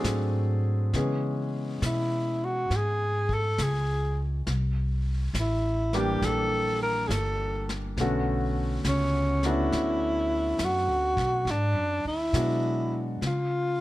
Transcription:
0.00 0.91 G#2 medium
0.00 0.96 F#3 medium
0.00 0.96 A3 medium
0.00 0.95 C4 medium
0.00 0.96 D4 medium
0.00 0.95 G#4 medium
0.00 0.96 A4 medium
0.04 snare soft
0.04 hi-hat pedal soft
0.93 1.80 C#3 medium
0.93 2.30 E3 soft
0.93 2.30 G#3 soft
0.93 2.30 B3 soft
0.93 2.30 C#4 soft
0.93 2.31 G#4 medium
0.93 brush sweep soft
0.93 snare soft
1.82 2.68 B2 medium
1.82 2.46 E4 medium
1.82 snare soft
1.82 hi-hat pedal medium
2.45 2.78 F#4 medium
2.70 3.56 G#2 medium
2.70 brush sweep soft
2.70 snare soft
2.76 3.35 G#4 medium
3.29 kick soft
3.34 3.65 A4 medium
3.58 4.44 C#2 medium
3.58 snare medium
3.58 hi-hat pedal soft
3.63 4.20 G#4 medium
4.47 5.32 C2 medium
4.47 brush sweep soft
4.47 snare soft
5.34 6.19 A1 medium
5.34 snare soft
5.34 hi-hat pedal soft
5.40 5.99 E4 medium
5.93 7.05 E3 medium
5.93 7.05 G3 medium
5.93 7.05 A#3 medium
5.93 7.05 D4 medium
5.93 7.05 G4 medium
5.93 snare soft
5.97 6.27 G4 medium
6.21 7.07 A#1 medium
6.21 6.82 A4 loud
6.21 brush sweep soft
6.21 snare soft
6.82 7.09 A#4 medium
7.08 7.95 G1 medium
7.08 7.13 G#4 medium
7.08 snare soft
7.08 hi-hat pedal medium
7.12 7.70 A4 medium
7.69 snare soft
7.97 8.82 B1 medium
7.97 8.51 D3 medium
7.97 8.51 A3 medium
7.97 8.51 B3 medium
7.97 brush sweep soft
7.97 snare soft
8.01 8.52 C#4 medium
8.01 8.52 F#4 medium
8.84 9.69 C#2 medium
8.84 snare soft
8.84 hi-hat pedal soft
8.88 9.48 C#4 medium
9.43 10.54 A3 medium
9.43 10.54 B3 medium
9.43 10.55 C#4 medium
9.43 10.54 D4 medium
9.43 10.66 E4 loud
9.43 10.54 F#4 medium
9.43 snare soft
9.72 10.56 D2 medium
9.72 brush sweep soft
9.72 snare soft
10.58 10.87 F#2 medium
10.58 snare medium
10.58 hi-hat pedal soft
10.65 11.52 F#4 medium
10.87 11.15 D2 soft
11.16 11.44 B1 medium
11.16 kick soft
11.16 snare soft
11.45 11.74 G#2 medium
11.45 brush sweep soft
11.45 snare soft
11.51 12.07 D4 medium
11.74 12.04 F#2 medium
12.04 12.32 D2 medium
12.04 13.02 E4 medium
12.33 13.19 B2 medium
12.33 12.87 F#3 soft
12.33 12.87 G#3 soft
12.33 12.87 B3 soft
12.33 12.88 D4 soft
12.33 12.88 F#4 medium
12.33 snare soft
12.33 hi-hat pedal medium
13.21 13.81 C#3 medium
13.21 brush sweep soft
13.21 snare soft
13.26 13.81 F4 medium

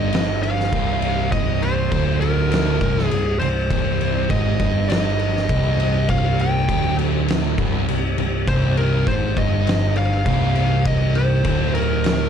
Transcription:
0.00 0.69 G1 medium
0.00 0.72 G2 loud
0.00 0.42 D#5 loud
0.13 snare loud
0.13 crash medium
0.43 1.31 F5 medium
0.43 crash medium
0.60 snare soft
0.72 1.88 C1 loud
0.72 1.91 C2 loud
0.72 kick loud
0.72 crash medium
1.02 crash medium
1.32 1.63 D#5 loud
1.32 kick loud
1.32 crash medium
1.62 2.20 C5 medium
1.62 crash medium
1.91 2.77 D1 medium
1.91 2.80 D2 loud
1.91 kick medium
1.91 crash medium
2.21 3.06 A#4 loud
2.21 crash medium
2.52 snare loud
2.52 crash medium
2.80 3.09 C1 loud
2.80 3.10 C2 loud
2.80 kick medium
2.80 crash medium
2.99 snare soft
3.06 3.39 G#4 loud
3.11 3.39 C1 medium
3.11 3.35 C2 medium
3.11 crash medium
3.40 3.68 C1 medium
3.40 3.65 C2 medium
3.40 4.32 C5 medium
3.40 crash medium
3.71 4.26 C1 medium
3.71 4.29 C2 loud
3.71 kick loud
3.71 crash medium
4.01 crash medium
4.30 4.58 G#1 medium
4.30 4.59 G#2 loud
4.30 4.88 D#5 loud
4.30 kick loud
4.30 crash medium
4.59 5.45 G1 medium
4.59 5.48 G2 loud
4.59 kick loud
4.59 crash medium
4.89 6.10 D#5 loud
4.89 snare loud
4.89 crash medium
5.19 crash medium
5.37 snare soft
5.49 6.65 C1 loud
5.49 6.69 C2 loud
5.49 kick loud
5.49 crash medium
5.80 crash medium
6.09 6.40 F5 loud
6.09 kick loud
6.09 crash medium
6.39 6.96 G5 loud
6.39 crash medium
6.69 7.54 D1 medium
6.69 7.57 D2 loud
6.69 kick loud
6.69 crash medium
6.99 crash medium
7.28 snare loud
7.28 crash medium
7.58 7.86 C1 medium
7.58 7.87 C2 loud
7.58 kick medium
7.58 crash medium
7.88 8.16 C1 medium
7.88 8.12 C2 medium
7.88 crash medium
8.18 8.45 C1 medium
8.18 8.42 C2 medium
8.18 crash medium
8.47 9.03 C1 medium
8.47 9.06 C2 loud
8.47 8.77 C5 loud
8.47 kick loud
8.47 crash medium
8.77 9.08 A#4 medium
8.77 crash medium
9.07 9.34 G#1 medium
9.07 9.36 G#2 loud
9.07 9.38 C5 medium
9.07 kick medium
9.07 crash medium
9.36 10.22 G1 medium
9.36 10.25 G2 loud
9.36 9.93 D#5 loud
9.36 kick loud
9.36 crash medium
9.67 snare loud
9.67 crash medium
9.96 10.87 F5 loud
9.96 crash medium
10.26 11.41 C1 loud
10.26 11.44 C2 loud
10.26 kick loud
10.26 crash medium
10.55 crash medium
10.85 11.17 D#5 loud
10.85 kick loud
10.85 crash medium
11.15 11.74 C5 loud
11.15 crash medium
11.45 12.29 D1 medium
11.45 12.29 D2 loud
11.45 kick medium
11.45 crash medium
11.75 12.29 A#4 medium
11.75 crash medium
12.04 snare loud
12.04 crash medium

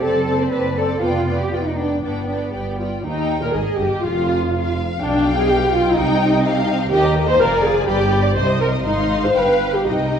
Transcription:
0.03 0.46 F#1 medium
0.03 0.27 C4 medium
0.03 0.39 A4 medium
0.03 0.28 D5 medium
0.03 0.25 A5 medium
0.26 0.51 C4 medium
0.26 0.52 D5 medium
0.26 0.49 A5 soft
0.39 0.52 C5 medium
0.50 0.95 F#1 medium
0.50 0.75 C4 soft
0.50 0.76 B4 medium
0.50 0.76 D5 soft
0.50 0.75 A5 soft
0.76 1.01 C4 soft
0.76 1.01 A4 medium
0.76 1.01 D5 soft
0.76 1.01 A5 soft
1.01 1.46 F1 medium
1.01 1.24 B3 medium
1.01 1.39 F4 medium
1.01 1.27 D5 soft
1.01 1.25 G5 medium
1.26 1.50 B3 soft
1.26 1.52 D5 soft
1.26 1.52 G5 soft
1.39 1.52 G4 medium
1.51 1.97 F1 medium
1.51 1.76 B3 soft
1.51 1.65 F4 medium
1.51 1.78 D5 soft
1.51 1.76 G5 soft
1.65 1.78 D#4 medium
1.77 2.02 B3 soft
1.77 2.03 D4 medium
1.77 2.02 D5 soft
1.77 2.02 G5 soft
2.02 2.48 G1 soft
2.02 2.78 B3 medium
2.02 2.27 D4 soft
2.02 2.28 D5 soft
2.02 2.27 G5 soft
2.28 2.53 D4 soft
2.28 2.53 D5 soft
2.28 2.51 G5 soft
2.52 2.99 G1 soft
2.52 2.78 G4 soft
2.52 2.79 D5 soft
2.52 2.78 G5 soft
2.79 3.05 F4 soft
2.79 3.05 D5 soft
2.79 3.04 G5 soft
3.05 3.40 D#2 medium
3.05 3.40 D#4 medium
3.05 3.51 G5 medium
3.42 3.54 A#2 medium
3.42 3.55 A#4 medium
3.53 3.63 G#1 medium
3.53 3.63 G#2 soft
3.53 3.79 G#4 medium
3.53 3.80 G#4 medium
3.53 4.04 D#5 medium
3.78 3.87 G1 medium
3.78 3.86 G2 medium
3.78 4.03 G4 medium
3.78 4.04 G4 medium
4.02 4.75 F1 medium
4.02 4.76 F2 medium
4.02 4.77 F4 medium
4.02 4.99 F5 medium
5.00 5.92 B1 medium
5.00 5.92 B2 medium
5.00 5.34 D4 medium
5.00 5.93 F5 medium
5.00 5.96 G5 medium
5.00 6.88 G5 medium
5.36 5.48 G#4 medium
5.48 5.72 G4 medium
5.72 5.96 F4 medium
5.95 6.92 C2 medium
5.95 6.92 C3 medium
5.95 6.67 D#4 medium
5.95 6.87 D#5 medium
5.95 6.43 G5 medium
6.46 6.92 F5 medium
6.92 7.37 D#2 medium
6.92 7.25 G4 loud
6.92 7.03 A#4 medium
6.92 7.40 D#5 medium
6.92 7.03 G5 medium
7.04 7.16 D#5 medium
7.04 7.16 A#5 medium
7.16 7.28 A#4 medium
7.16 7.28 G5 medium
7.28 7.40 C5 medium
7.28 7.40 D#5 medium
7.28 7.40 A#5 medium
7.40 7.88 F1 medium
7.40 7.88 F2 medium
7.40 7.64 A#4 medium
7.40 7.87 D5 medium
7.40 7.52 F5 medium
7.52 7.64 D5 medium
7.52 7.64 G#5 medium
7.64 7.88 G#4 medium
7.64 7.77 F5 medium
7.76 7.88 D5 medium
7.76 7.88 G#5 medium
7.87 8.35 G1 medium
7.87 8.35 G2 medium
7.87 8.23 G4 loud
7.87 7.99 B4 medium
7.87 8.36 D5 medium
7.87 7.99 B5 medium
7.98 8.11 D5 medium
7.98 8.11 D6 medium
8.12 8.24 B4 medium
8.12 8.24 B5 medium
8.23 8.36 D5 medium
8.23 8.36 D6 medium
8.36 8.85 C2 medium
8.36 8.85 C3 medium
8.36 8.47 C5 medium
8.36 8.61 C5 medium
8.36 8.85 D#5 medium
8.36 8.47 C6 soft
8.47 8.60 D#5 medium
8.47 8.60 D#6 medium
8.60 8.69 A#4 medium
8.60 8.72 C5 medium
8.60 8.73 C6 medium
8.72 8.83 D#5 soft
8.72 8.85 D#6 soft
8.84 9.33 G#1 medium
8.84 9.33 G#2 medium
8.84 9.23 D#4 medium
8.84 9.32 D#5 medium
8.84 9.88 F5 medium
8.84 9.32 C6 medium
9.24 9.36 C5 medium
9.35 9.87 G1 medium
9.35 9.87 G2 medium
9.35 9.75 B4 medium
9.35 9.87 F5 medium
9.35 9.86 G5 medium
9.75 9.88 G4 medium
9.87 10.20 C2 medium
9.87 10.20 C3 medium
9.87 10.20 D#4 medium
9.87 10.20 D#5 medium
9.87 10.20 G5 medium

